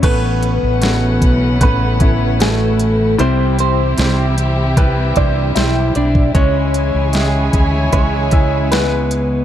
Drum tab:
CC |x---------------|----------------|----------------|
HH |x-x-x-x-x-x-x-x-|x-x-x-x-x-x-x-x-|x-x-x-x-x-x-x-x-|
SD |----o-------o---|----o-------o---|----o-------o---|
BD |o-----o-o-o-----|--------o-o----o|o-----o-o-o-----|